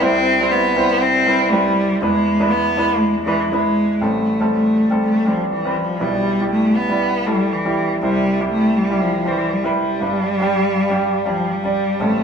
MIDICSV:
0, 0, Header, 1, 3, 480
1, 0, Start_track
1, 0, Key_signature, 0, "minor"
1, 0, Tempo, 499833
1, 18, Time_signature, 4, 2, 24, 8
1, 11749, End_track
2, 0, Start_track
2, 0, Title_t, "Grand piano"
2, 0, Program_c, 0, 0
2, 0, Control_c, 0, 64, 127
2, 3, Note_on_c, 0, 55, 74
2, 11, Note_on_c, 0, 60, 66
2, 12, Note_on_c, 0, 36, 63
2, 12, Note_on_c, 0, 48, 63
2, 12, Note_on_c, 0, 64, 66
2, 17, Note_on_c, 0, 72, 76
2, 32, Control_c, 0, 64, 0
2, 224, Control_c, 0, 64, 127
2, 334, Note_off_c, 0, 55, 0
2, 338, Note_off_c, 0, 60, 0
2, 338, Note_off_c, 0, 64, 0
2, 341, Note_off_c, 0, 72, 0
2, 393, Note_on_c, 0, 55, 76
2, 398, Note_on_c, 0, 60, 69
2, 401, Note_on_c, 0, 64, 73
2, 408, Note_on_c, 0, 72, 87
2, 698, Note_off_c, 0, 55, 0
2, 701, Note_off_c, 0, 60, 0
2, 702, Note_off_c, 0, 64, 0
2, 705, Note_off_c, 0, 72, 0
2, 734, Note_on_c, 0, 55, 76
2, 739, Note_on_c, 0, 60, 68
2, 744, Note_on_c, 0, 64, 68
2, 752, Note_on_c, 0, 72, 85
2, 1163, Note_off_c, 0, 55, 0
2, 1165, Note_off_c, 0, 60, 0
2, 1167, Note_off_c, 0, 64, 0
2, 1171, Note_off_c, 0, 72, 0
2, 1213, Note_on_c, 0, 55, 77
2, 1221, Note_on_c, 0, 60, 65
2, 1227, Note_on_c, 0, 64, 65
2, 1229, Note_on_c, 0, 71, 83
2, 1429, Note_off_c, 0, 55, 0
2, 1433, Note_off_c, 0, 60, 0
2, 1436, Note_off_c, 0, 64, 0
2, 1437, Note_off_c, 0, 71, 0
2, 1460, Note_on_c, 0, 55, 68
2, 1471, Note_on_c, 0, 60, 68
2, 1474, Note_on_c, 0, 64, 66
2, 1475, Note_on_c, 0, 71, 82
2, 1885, Note_off_c, 0, 55, 0
2, 1891, Note_off_c, 0, 60, 0
2, 1892, Note_off_c, 0, 64, 0
2, 1893, Note_off_c, 0, 71, 0
2, 1897, Note_off_c, 0, 36, 0
2, 1897, Note_off_c, 0, 48, 0
2, 1936, Note_on_c, 0, 56, 69
2, 1941, Note_on_c, 0, 62, 63
2, 1942, Note_on_c, 0, 40, 59
2, 1943, Note_on_c, 0, 52, 59
2, 1947, Note_on_c, 0, 64, 63
2, 1948, Note_on_c, 0, 71, 81
2, 1949, Control_c, 0, 64, 0
2, 2112, Control_c, 0, 64, 127
2, 2260, Note_off_c, 0, 56, 0
2, 2263, Note_off_c, 0, 62, 0
2, 2265, Note_off_c, 0, 64, 0
2, 2266, Note_off_c, 0, 71, 0
2, 2302, Note_on_c, 0, 56, 71
2, 2307, Note_on_c, 0, 62, 66
2, 2313, Note_on_c, 0, 71, 82
2, 2314, Note_on_c, 0, 64, 68
2, 2613, Note_off_c, 0, 56, 0
2, 2615, Note_off_c, 0, 62, 0
2, 2618, Note_off_c, 0, 71, 0
2, 2619, Note_off_c, 0, 64, 0
2, 2660, Note_on_c, 0, 62, 66
2, 2661, Note_on_c, 0, 56, 73
2, 2667, Note_on_c, 0, 64, 64
2, 2673, Note_on_c, 0, 71, 79
2, 3086, Note_off_c, 0, 56, 0
2, 3086, Note_off_c, 0, 62, 0
2, 3089, Note_off_c, 0, 64, 0
2, 3092, Note_off_c, 0, 71, 0
2, 3132, Note_on_c, 0, 56, 71
2, 3136, Note_on_c, 0, 62, 65
2, 3140, Note_on_c, 0, 64, 67
2, 3147, Note_on_c, 0, 71, 80
2, 3348, Note_off_c, 0, 56, 0
2, 3350, Note_off_c, 0, 62, 0
2, 3352, Note_off_c, 0, 64, 0
2, 3356, Note_off_c, 0, 71, 0
2, 3381, Note_on_c, 0, 56, 66
2, 3383, Note_on_c, 0, 62, 63
2, 3390, Note_on_c, 0, 64, 61
2, 3396, Note_on_c, 0, 71, 72
2, 3806, Note_off_c, 0, 56, 0
2, 3807, Note_off_c, 0, 62, 0
2, 3811, Note_off_c, 0, 64, 0
2, 3813, Note_off_c, 0, 71, 0
2, 3822, Note_off_c, 0, 40, 0
2, 3822, Note_off_c, 0, 52, 0
2, 3848, Note_on_c, 0, 55, 57
2, 3855, Note_on_c, 0, 33, 50
2, 3856, Note_on_c, 0, 60, 55
2, 3858, Note_on_c, 0, 45, 54
2, 3862, Note_on_c, 0, 69, 64
2, 3869, Control_c, 0, 64, 0
2, 4048, Control_c, 0, 64, 127
2, 4177, Note_off_c, 0, 55, 0
2, 4181, Note_off_c, 0, 60, 0
2, 4183, Note_off_c, 0, 69, 0
2, 4225, Note_on_c, 0, 55, 66
2, 4236, Note_on_c, 0, 60, 57
2, 4240, Note_on_c, 0, 69, 71
2, 4641, Note_off_c, 0, 55, 0
2, 4646, Note_off_c, 0, 60, 0
2, 4648, Note_off_c, 0, 69, 0
2, 4711, Note_on_c, 0, 55, 65
2, 4714, Note_on_c, 0, 60, 56
2, 4724, Note_on_c, 0, 69, 71
2, 5017, Note_off_c, 0, 55, 0
2, 5019, Note_off_c, 0, 60, 0
2, 5024, Note_off_c, 0, 69, 0
2, 5045, Note_on_c, 0, 55, 65
2, 5057, Note_on_c, 0, 60, 57
2, 5058, Note_on_c, 0, 62, 67
2, 5375, Note_off_c, 0, 55, 0
2, 5381, Note_off_c, 0, 60, 0
2, 5382, Note_off_c, 0, 62, 0
2, 5426, Note_on_c, 0, 55, 64
2, 5431, Note_on_c, 0, 60, 59
2, 5441, Note_on_c, 0, 71, 72
2, 5735, Note_off_c, 0, 55, 0
2, 5737, Note_off_c, 0, 60, 0
2, 5738, Note_off_c, 0, 33, 0
2, 5740, Note_off_c, 0, 45, 0
2, 5742, Note_off_c, 0, 71, 0
2, 5762, Note_on_c, 0, 55, 62
2, 5765, Note_on_c, 0, 47, 53
2, 5767, Note_on_c, 0, 35, 56
2, 5770, Note_on_c, 0, 64, 55
2, 5774, Note_on_c, 0, 71, 66
2, 5790, Control_c, 0, 64, 0
2, 5968, Control_c, 0, 64, 127
2, 6093, Note_off_c, 0, 55, 0
2, 6097, Note_off_c, 0, 64, 0
2, 6099, Note_off_c, 0, 71, 0
2, 6153, Note_on_c, 0, 55, 64
2, 6156, Note_on_c, 0, 64, 58
2, 6164, Note_on_c, 0, 67, 72
2, 6564, Note_off_c, 0, 55, 0
2, 6566, Note_off_c, 0, 64, 0
2, 6570, Note_off_c, 0, 67, 0
2, 6623, Note_on_c, 0, 55, 67
2, 6629, Note_on_c, 0, 64, 56
2, 6634, Note_on_c, 0, 74, 72
2, 6933, Note_off_c, 0, 55, 0
2, 6936, Note_off_c, 0, 64, 0
2, 6939, Note_off_c, 0, 74, 0
2, 6976, Note_on_c, 0, 55, 66
2, 6985, Note_on_c, 0, 64, 59
2, 6990, Note_on_c, 0, 69, 71
2, 7301, Note_off_c, 0, 55, 0
2, 7305, Note_off_c, 0, 64, 0
2, 7307, Note_off_c, 0, 69, 0
2, 7348, Note_on_c, 0, 55, 65
2, 7354, Note_on_c, 0, 64, 61
2, 7358, Note_on_c, 0, 67, 73
2, 7653, Note_off_c, 0, 47, 0
2, 7655, Note_off_c, 0, 35, 0
2, 7656, Note_off_c, 0, 55, 0
2, 7659, Note_off_c, 0, 64, 0
2, 7661, Note_off_c, 0, 67, 0
2, 7707, Note_on_c, 0, 55, 65
2, 7711, Note_on_c, 0, 36, 57
2, 7712, Note_on_c, 0, 48, 57
2, 7713, Control_c, 0, 64, 0
2, 7715, Note_on_c, 0, 64, 56
2, 7723, Note_on_c, 0, 72, 68
2, 7909, Control_c, 0, 64, 127
2, 8026, Note_off_c, 0, 55, 0
2, 8030, Note_off_c, 0, 64, 0
2, 8034, Note_off_c, 0, 72, 0
2, 8062, Note_on_c, 0, 55, 63
2, 8069, Note_on_c, 0, 64, 63
2, 8077, Note_on_c, 0, 67, 74
2, 8479, Note_off_c, 0, 55, 0
2, 8483, Note_off_c, 0, 64, 0
2, 8487, Note_off_c, 0, 67, 0
2, 8552, Note_on_c, 0, 55, 67
2, 8555, Note_on_c, 0, 64, 60
2, 8565, Note_on_c, 0, 67, 73
2, 8858, Note_off_c, 0, 55, 0
2, 8860, Note_off_c, 0, 64, 0
2, 8864, Note_off_c, 0, 67, 0
2, 8889, Note_on_c, 0, 55, 65
2, 8896, Note_on_c, 0, 64, 59
2, 8902, Note_on_c, 0, 72, 73
2, 9217, Note_off_c, 0, 55, 0
2, 9221, Note_off_c, 0, 64, 0
2, 9224, Note_off_c, 0, 72, 0
2, 9254, Note_on_c, 0, 55, 66
2, 9260, Note_on_c, 0, 64, 63
2, 9269, Note_on_c, 0, 71, 76
2, 9569, Note_off_c, 0, 55, 0
2, 9572, Note_off_c, 0, 64, 0
2, 9577, Note_off_c, 0, 71, 0
2, 9587, Note_off_c, 0, 36, 0
2, 9587, Note_off_c, 0, 48, 0
2, 9604, Note_on_c, 0, 55, 65
2, 9615, Note_on_c, 0, 43, 54
2, 9615, Note_on_c, 0, 62, 61
2, 9616, Note_on_c, 0, 31, 52
2, 9622, Note_on_c, 0, 71, 67
2, 9629, Control_c, 0, 64, 0
2, 9808, Control_c, 0, 64, 127
2, 9935, Note_off_c, 0, 55, 0
2, 9940, Note_off_c, 0, 62, 0
2, 9944, Note_off_c, 0, 71, 0
2, 9987, Note_on_c, 0, 55, 78
2, 9998, Note_on_c, 0, 62, 72
2, 10006, Note_on_c, 0, 67, 86
2, 10402, Note_off_c, 0, 55, 0
2, 10408, Note_off_c, 0, 62, 0
2, 10412, Note_off_c, 0, 67, 0
2, 10465, Note_on_c, 0, 55, 76
2, 10471, Note_on_c, 0, 62, 71
2, 10482, Note_on_c, 0, 67, 79
2, 10775, Note_off_c, 0, 55, 0
2, 10778, Note_off_c, 0, 62, 0
2, 10783, Note_off_c, 0, 67, 0
2, 10808, Note_on_c, 0, 55, 67
2, 10817, Note_on_c, 0, 62, 58
2, 10823, Note_on_c, 0, 67, 69
2, 11137, Note_off_c, 0, 55, 0
2, 11141, Note_off_c, 0, 62, 0
2, 11144, Note_off_c, 0, 67, 0
2, 11176, Note_on_c, 0, 55, 64
2, 11189, Note_on_c, 0, 62, 59
2, 11191, Note_on_c, 0, 74, 70
2, 11490, Note_off_c, 0, 55, 0
2, 11497, Note_off_c, 0, 62, 0
2, 11498, Note_off_c, 0, 74, 0
2, 11499, Note_off_c, 0, 31, 0
2, 11499, Note_off_c, 0, 43, 0
2, 11518, Note_on_c, 0, 55, 65
2, 11523, Note_on_c, 0, 33, 53
2, 11525, Note_on_c, 0, 45, 53
2, 11528, Note_on_c, 0, 60, 55
2, 11534, Note_on_c, 0, 69, 70
2, 11552, Control_c, 0, 64, 0
2, 11700, Control_c, 0, 64, 127
2, 11749, Note_off_c, 0, 33, 0
2, 11749, Note_off_c, 0, 45, 0
2, 11749, Note_off_c, 0, 55, 0
2, 11749, Note_off_c, 0, 60, 0
2, 11749, Note_off_c, 0, 69, 0
2, 11749, End_track
3, 0, Start_track
3, 0, Title_t, "Cello"
3, 0, Program_c, 1, 42
3, 19, Note_on_c, 1, 60, 112
3, 491, Note_on_c, 1, 59, 98
3, 505, Note_off_c, 1, 60, 0
3, 974, Note_on_c, 1, 60, 104
3, 988, Note_off_c, 1, 59, 0
3, 1452, Note_on_c, 1, 55, 90
3, 1467, Note_off_c, 1, 60, 0
3, 1927, Note_on_c, 1, 56, 93
3, 1941, Note_off_c, 1, 55, 0
3, 2411, Note_on_c, 1, 59, 94
3, 2426, Note_off_c, 1, 56, 0
3, 2890, Note_on_c, 1, 56, 81
3, 2905, Note_off_c, 1, 59, 0
3, 3127, Note_off_c, 1, 56, 0
3, 3132, Note_on_c, 1, 52, 77
3, 3358, Note_off_c, 1, 52, 0
3, 3377, Note_on_c, 1, 56, 81
3, 3863, Note_on_c, 1, 57, 80
3, 3877, Note_off_c, 1, 56, 0
3, 4336, Note_off_c, 1, 57, 0
3, 4342, Note_on_c, 1, 57, 76
3, 4786, Note_off_c, 1, 57, 0
3, 4826, Note_on_c, 1, 57, 79
3, 5070, Note_on_c, 1, 53, 75
3, 5084, Note_off_c, 1, 57, 0
3, 5301, Note_off_c, 1, 53, 0
3, 5307, Note_on_c, 1, 52, 70
3, 5549, Note_on_c, 1, 53, 77
3, 5563, Note_off_c, 1, 52, 0
3, 5785, Note_on_c, 1, 55, 89
3, 5799, Note_off_c, 1, 53, 0
3, 6254, Note_off_c, 1, 55, 0
3, 6260, Note_on_c, 1, 57, 83
3, 6498, Note_on_c, 1, 59, 89
3, 6512, Note_off_c, 1, 57, 0
3, 6990, Note_on_c, 1, 55, 82
3, 7004, Note_off_c, 1, 59, 0
3, 7219, Note_on_c, 1, 52, 76
3, 7233, Note_off_c, 1, 55, 0
3, 7694, Note_off_c, 1, 52, 0
3, 7700, Note_on_c, 1, 55, 89
3, 8146, Note_off_c, 1, 55, 0
3, 8182, Note_on_c, 1, 57, 86
3, 8422, Note_on_c, 1, 55, 84
3, 8436, Note_off_c, 1, 57, 0
3, 8659, Note_on_c, 1, 53, 76
3, 8673, Note_off_c, 1, 55, 0
3, 8907, Note_on_c, 1, 52, 78
3, 8921, Note_off_c, 1, 53, 0
3, 9147, Note_on_c, 1, 55, 79
3, 9162, Note_off_c, 1, 52, 0
3, 9383, Note_off_c, 1, 55, 0
3, 9389, Note_on_c, 1, 55, 92
3, 10826, Note_on_c, 1, 53, 81
3, 10841, Note_off_c, 1, 55, 0
3, 11057, Note_on_c, 1, 55, 78
3, 11071, Note_off_c, 1, 53, 0
3, 11539, Note_on_c, 1, 57, 88
3, 11553, Note_off_c, 1, 55, 0
3, 11749, Note_off_c, 1, 57, 0
3, 11749, End_track
0, 0, End_of_file